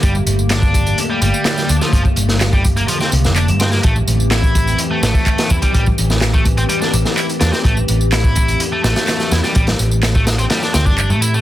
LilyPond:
<<
  \new Staff \with { instrumentName = "Ambient pad" } { \time 4/4 \key a \phrygian \tempo 4 = 126 << { <d bes g'>1~ | <d bes g'>1 | <e c' g'>1~ | <e c' g'>1~ |
<e c' g'>1~ | <e c' g'>1 | } \\ { a1~ | a1~ | a1~ | a1~ |
a1~ | a1 | } >> }
  \new Staff \with { instrumentName = "Distorted electric guitar" } { \time 4/4 \key a \phrygian g16 r8. d'4 r16 g16 g4 d'16 f16 | f16 r4 g16 r16 bes16 f16 c'16 r8 d'16 r16 c'16 bes16 | a16 r8. e'4 r16 a16 a4 e'16 g16 | g16 r4 a16 r16 c'16 g16 d'16 r8 e'16 r16 d'16 c'16 |
a16 r8. e'4 r16 a16 a4 e'16 g16 | g16 r4 a16 r16 c'16 g16 d'16 c'16 d'16 d'16 a16 e'16 a16 | }
  \new Staff \with { instrumentName = "Picked electric bass" } { \clef bass \time 4/4 \key a \phrygian g,,16 r16 g,,4. r8 g,,16 r8. d,16 r16 | g,,16 r16 g,,4. r8 c,16 f,,8 g,8. | a,,16 r16 a,,4. r8 a,,16 r8. e,16 r16 | a,,16 r16 a,,4. r8 a,,16 r8. e,16 r16 |
a,,16 r16 a,,4. r8 a,,16 r8. e,16 r16 | a,,16 r16 a,,4. r8 d,16 g,,8 a,8. | }
  \new DrumStaff \with { instrumentName = "Drums" } \drummode { \time 4/4 <hh bd tamb>16 tamb16 <hh tamb>16 tamb16 <hc hh sn tamb>16 <bd tamb>16 <hh bd tamb>16 <hh tamb>16 <hh tamb>8 <hh tamb>16 tamb16 <hc hh sn tamb>16 <sn tamb>16 <hh tamb>16 <sn tamb>16 | <hh bd tamb>16 <bd tamb>16 <hh tamb>16 <sn tamb>16 <hc hh sn tamb>16 <bd tamb>16 <hh bd tamb>16 <hh tamb>16 <hh tamb>16 <sn tamb>16 <hh tamb>16 <sn tamb>16 <hc hh tamb>16 <hh tamb>16 <hh sn tamb>16 <sn tamb>16 | <hh bd tamb>16 tamb16 <hh tamb>16 tamb16 <hc hh sn tamb>16 <bd tamb>16 <hh bd tamb>16 <hh tamb>16 <hh tamb>8 <hh sn tamb>16 <bd tamb>16 <hc hh bd tamb>16 <hh sn tamb>16 <bd tamb>16 <hh bd tamb>16 | <hh bd tamb>16 <bd tamb>16 <hh tamb>16 <sn tamb>16 <hc hh sn tamb>16 <bd tamb>16 <hh bd tamb>16 <hh tamb>16 <hh tamb>16 <sn tamb>16 <hh tamb>16 <sn tamb>16 <hc hh tamb>16 <hh tamb>16 <hh sn tamb>16 <sn tamb>16 |
<hh bd tamb>16 tamb16 <hh tamb>16 tamb16 <hc hh sn tamb>16 <bd tamb>16 <hh bd tamb>16 <hh tamb>16 <hh tamb>8 <hh sn tamb>16 <hh sn tamb>16 <hc hh sn tamb>16 <sn tamb>16 <hh sn tamb>16 <sn tamb>16 | <hh bd tamb>16 <hh sn tamb>16 <hh tamb>16 tamb16 <hc hh sn tamb>16 <bd tamb>16 <hh sn tamb>16 <hh tamb>16 <hh sn tamb>16 <sn tamb>16 <hh sn tamb>16 <bd tamb>16 <hc tamb>16 tamb16 <hh tamb>16 tamb16 | }
>>